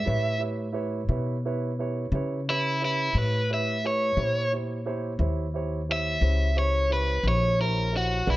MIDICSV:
0, 0, Header, 1, 4, 480
1, 0, Start_track
1, 0, Tempo, 682594
1, 52, Time_signature, 12, 3, 24, 8
1, 5884, End_track
2, 0, Start_track
2, 0, Title_t, "Overdriven electric guitar"
2, 0, Program_c, 0, 29
2, 0, Note_on_c, 0, 76, 89
2, 287, Note_off_c, 0, 76, 0
2, 1759, Note_on_c, 0, 64, 91
2, 1978, Note_off_c, 0, 64, 0
2, 2003, Note_on_c, 0, 64, 83
2, 2220, Note_off_c, 0, 64, 0
2, 2238, Note_on_c, 0, 71, 85
2, 2458, Note_off_c, 0, 71, 0
2, 2489, Note_on_c, 0, 76, 83
2, 2704, Note_off_c, 0, 76, 0
2, 2719, Note_on_c, 0, 73, 92
2, 3172, Note_off_c, 0, 73, 0
2, 4164, Note_on_c, 0, 76, 94
2, 4615, Note_off_c, 0, 76, 0
2, 4630, Note_on_c, 0, 73, 87
2, 4855, Note_off_c, 0, 73, 0
2, 4871, Note_on_c, 0, 71, 79
2, 5096, Note_off_c, 0, 71, 0
2, 5120, Note_on_c, 0, 73, 85
2, 5341, Note_off_c, 0, 73, 0
2, 5353, Note_on_c, 0, 70, 82
2, 5577, Note_off_c, 0, 70, 0
2, 5604, Note_on_c, 0, 66, 95
2, 5823, Note_off_c, 0, 66, 0
2, 5837, Note_on_c, 0, 64, 92
2, 5884, Note_off_c, 0, 64, 0
2, 5884, End_track
3, 0, Start_track
3, 0, Title_t, "Grand piano"
3, 0, Program_c, 1, 0
3, 34, Note_on_c, 1, 64, 59
3, 38, Note_on_c, 1, 67, 55
3, 45, Note_on_c, 1, 71, 57
3, 49, Note_on_c, 1, 73, 70
3, 223, Note_off_c, 1, 64, 0
3, 225, Note_off_c, 1, 67, 0
3, 229, Note_off_c, 1, 71, 0
3, 230, Note_off_c, 1, 73, 0
3, 267, Note_on_c, 1, 64, 52
3, 274, Note_on_c, 1, 71, 49
3, 282, Note_on_c, 1, 67, 49
3, 287, Note_on_c, 1, 73, 57
3, 459, Note_off_c, 1, 64, 0
3, 463, Note_off_c, 1, 71, 0
3, 467, Note_off_c, 1, 67, 0
3, 469, Note_off_c, 1, 73, 0
3, 510, Note_on_c, 1, 64, 70
3, 518, Note_on_c, 1, 67, 59
3, 519, Note_on_c, 1, 71, 62
3, 522, Note_on_c, 1, 73, 74
3, 701, Note_off_c, 1, 64, 0
3, 704, Note_off_c, 1, 67, 0
3, 705, Note_off_c, 1, 71, 0
3, 707, Note_off_c, 1, 73, 0
3, 764, Note_on_c, 1, 64, 63
3, 769, Note_on_c, 1, 67, 53
3, 771, Note_on_c, 1, 71, 55
3, 779, Note_on_c, 1, 73, 62
3, 948, Note_off_c, 1, 64, 0
3, 950, Note_off_c, 1, 67, 0
3, 951, Note_off_c, 1, 71, 0
3, 955, Note_off_c, 1, 73, 0
3, 1021, Note_on_c, 1, 67, 55
3, 1022, Note_on_c, 1, 64, 66
3, 1024, Note_on_c, 1, 71, 57
3, 1030, Note_on_c, 1, 73, 66
3, 1196, Note_off_c, 1, 67, 0
3, 1197, Note_off_c, 1, 64, 0
3, 1197, Note_off_c, 1, 71, 0
3, 1201, Note_off_c, 1, 73, 0
3, 1259, Note_on_c, 1, 64, 57
3, 1259, Note_on_c, 1, 67, 52
3, 1259, Note_on_c, 1, 71, 52
3, 1269, Note_on_c, 1, 73, 66
3, 1435, Note_off_c, 1, 64, 0
3, 1435, Note_off_c, 1, 67, 0
3, 1435, Note_off_c, 1, 71, 0
3, 1440, Note_off_c, 1, 73, 0
3, 1496, Note_on_c, 1, 64, 65
3, 1504, Note_on_c, 1, 67, 57
3, 1506, Note_on_c, 1, 71, 56
3, 1511, Note_on_c, 1, 73, 71
3, 1674, Note_off_c, 1, 64, 0
3, 1677, Note_off_c, 1, 67, 0
3, 1678, Note_off_c, 1, 71, 0
3, 1681, Note_off_c, 1, 73, 0
3, 1746, Note_on_c, 1, 64, 54
3, 1750, Note_on_c, 1, 67, 50
3, 1756, Note_on_c, 1, 71, 49
3, 1759, Note_on_c, 1, 73, 57
3, 1919, Note_off_c, 1, 64, 0
3, 1921, Note_off_c, 1, 67, 0
3, 1923, Note_off_c, 1, 71, 0
3, 1925, Note_off_c, 1, 73, 0
3, 1971, Note_on_c, 1, 64, 50
3, 1982, Note_on_c, 1, 67, 47
3, 1983, Note_on_c, 1, 73, 60
3, 1984, Note_on_c, 1, 71, 51
3, 2151, Note_off_c, 1, 64, 0
3, 2157, Note_off_c, 1, 67, 0
3, 2157, Note_off_c, 1, 73, 0
3, 2158, Note_off_c, 1, 71, 0
3, 2207, Note_on_c, 1, 64, 51
3, 2215, Note_on_c, 1, 67, 47
3, 2219, Note_on_c, 1, 71, 49
3, 2223, Note_on_c, 1, 73, 58
3, 2389, Note_off_c, 1, 64, 0
3, 2393, Note_off_c, 1, 67, 0
3, 2395, Note_off_c, 1, 71, 0
3, 2397, Note_off_c, 1, 73, 0
3, 2460, Note_on_c, 1, 64, 55
3, 2462, Note_on_c, 1, 67, 50
3, 2465, Note_on_c, 1, 71, 51
3, 2467, Note_on_c, 1, 73, 59
3, 2636, Note_off_c, 1, 64, 0
3, 2637, Note_off_c, 1, 67, 0
3, 2638, Note_off_c, 1, 71, 0
3, 2639, Note_off_c, 1, 73, 0
3, 2699, Note_on_c, 1, 64, 55
3, 2703, Note_on_c, 1, 67, 49
3, 2706, Note_on_c, 1, 71, 50
3, 2711, Note_on_c, 1, 73, 59
3, 2875, Note_off_c, 1, 64, 0
3, 2877, Note_off_c, 1, 67, 0
3, 2879, Note_off_c, 1, 71, 0
3, 2881, Note_off_c, 1, 73, 0
3, 2930, Note_on_c, 1, 64, 68
3, 2933, Note_on_c, 1, 67, 59
3, 2940, Note_on_c, 1, 72, 57
3, 2945, Note_on_c, 1, 73, 68
3, 3111, Note_off_c, 1, 64, 0
3, 3112, Note_off_c, 1, 67, 0
3, 3116, Note_off_c, 1, 72, 0
3, 3118, Note_off_c, 1, 73, 0
3, 3180, Note_on_c, 1, 64, 53
3, 3189, Note_on_c, 1, 67, 51
3, 3189, Note_on_c, 1, 72, 49
3, 3192, Note_on_c, 1, 73, 57
3, 3356, Note_off_c, 1, 64, 0
3, 3360, Note_off_c, 1, 67, 0
3, 3360, Note_off_c, 1, 72, 0
3, 3362, Note_off_c, 1, 73, 0
3, 3415, Note_on_c, 1, 64, 67
3, 3417, Note_on_c, 1, 67, 62
3, 3420, Note_on_c, 1, 72, 63
3, 3423, Note_on_c, 1, 73, 74
3, 3594, Note_off_c, 1, 64, 0
3, 3595, Note_off_c, 1, 67, 0
3, 3596, Note_off_c, 1, 72, 0
3, 3598, Note_off_c, 1, 73, 0
3, 3651, Note_on_c, 1, 64, 67
3, 3660, Note_on_c, 1, 67, 58
3, 3661, Note_on_c, 1, 72, 53
3, 3663, Note_on_c, 1, 73, 65
3, 3832, Note_off_c, 1, 64, 0
3, 3836, Note_off_c, 1, 67, 0
3, 3837, Note_off_c, 1, 72, 0
3, 3838, Note_off_c, 1, 73, 0
3, 3894, Note_on_c, 1, 64, 63
3, 3902, Note_on_c, 1, 67, 59
3, 3903, Note_on_c, 1, 72, 56
3, 3908, Note_on_c, 1, 73, 68
3, 4073, Note_off_c, 1, 64, 0
3, 4077, Note_off_c, 1, 67, 0
3, 4078, Note_off_c, 1, 72, 0
3, 4081, Note_off_c, 1, 73, 0
3, 4141, Note_on_c, 1, 64, 51
3, 4142, Note_on_c, 1, 72, 43
3, 4145, Note_on_c, 1, 67, 46
3, 4149, Note_on_c, 1, 73, 56
3, 4317, Note_off_c, 1, 64, 0
3, 4318, Note_off_c, 1, 72, 0
3, 4319, Note_off_c, 1, 67, 0
3, 4321, Note_off_c, 1, 73, 0
3, 4367, Note_on_c, 1, 64, 52
3, 4372, Note_on_c, 1, 67, 52
3, 4374, Note_on_c, 1, 72, 48
3, 4382, Note_on_c, 1, 73, 58
3, 4550, Note_off_c, 1, 64, 0
3, 4553, Note_off_c, 1, 67, 0
3, 4554, Note_off_c, 1, 72, 0
3, 4558, Note_off_c, 1, 73, 0
3, 4613, Note_on_c, 1, 67, 51
3, 4616, Note_on_c, 1, 64, 54
3, 4619, Note_on_c, 1, 72, 46
3, 4621, Note_on_c, 1, 73, 65
3, 4793, Note_off_c, 1, 67, 0
3, 4795, Note_off_c, 1, 64, 0
3, 4797, Note_off_c, 1, 72, 0
3, 4798, Note_off_c, 1, 73, 0
3, 4851, Note_on_c, 1, 64, 52
3, 4855, Note_on_c, 1, 72, 49
3, 4857, Note_on_c, 1, 67, 54
3, 4863, Note_on_c, 1, 73, 65
3, 5032, Note_off_c, 1, 64, 0
3, 5035, Note_off_c, 1, 72, 0
3, 5036, Note_off_c, 1, 67, 0
3, 5039, Note_off_c, 1, 73, 0
3, 5103, Note_on_c, 1, 64, 52
3, 5105, Note_on_c, 1, 72, 47
3, 5110, Note_on_c, 1, 67, 51
3, 5111, Note_on_c, 1, 73, 60
3, 5279, Note_off_c, 1, 64, 0
3, 5280, Note_off_c, 1, 72, 0
3, 5282, Note_off_c, 1, 67, 0
3, 5283, Note_off_c, 1, 73, 0
3, 5343, Note_on_c, 1, 67, 49
3, 5344, Note_on_c, 1, 72, 54
3, 5345, Note_on_c, 1, 64, 61
3, 5354, Note_on_c, 1, 73, 63
3, 5519, Note_off_c, 1, 67, 0
3, 5519, Note_off_c, 1, 72, 0
3, 5520, Note_off_c, 1, 64, 0
3, 5525, Note_off_c, 1, 73, 0
3, 5568, Note_on_c, 1, 64, 53
3, 5573, Note_on_c, 1, 67, 48
3, 5576, Note_on_c, 1, 72, 49
3, 5581, Note_on_c, 1, 73, 59
3, 5751, Note_off_c, 1, 64, 0
3, 5754, Note_off_c, 1, 67, 0
3, 5756, Note_off_c, 1, 72, 0
3, 5758, Note_off_c, 1, 73, 0
3, 5808, Note_on_c, 1, 66, 63
3, 5814, Note_on_c, 1, 68, 61
3, 5814, Note_on_c, 1, 71, 61
3, 5819, Note_on_c, 1, 74, 70
3, 5884, Note_off_c, 1, 66, 0
3, 5884, Note_off_c, 1, 68, 0
3, 5884, Note_off_c, 1, 71, 0
3, 5884, Note_off_c, 1, 74, 0
3, 5884, End_track
4, 0, Start_track
4, 0, Title_t, "Upright bass"
4, 0, Program_c, 2, 32
4, 52, Note_on_c, 2, 45, 88
4, 750, Note_off_c, 2, 45, 0
4, 764, Note_on_c, 2, 47, 81
4, 1466, Note_off_c, 2, 47, 0
4, 1489, Note_on_c, 2, 49, 83
4, 2189, Note_off_c, 2, 49, 0
4, 2213, Note_on_c, 2, 45, 87
4, 2911, Note_off_c, 2, 45, 0
4, 2932, Note_on_c, 2, 46, 84
4, 3631, Note_off_c, 2, 46, 0
4, 3649, Note_on_c, 2, 39, 83
4, 4350, Note_off_c, 2, 39, 0
4, 4369, Note_on_c, 2, 37, 87
4, 5070, Note_off_c, 2, 37, 0
4, 5088, Note_on_c, 2, 34, 90
4, 5790, Note_off_c, 2, 34, 0
4, 5818, Note_on_c, 2, 35, 92
4, 5884, Note_off_c, 2, 35, 0
4, 5884, End_track
0, 0, End_of_file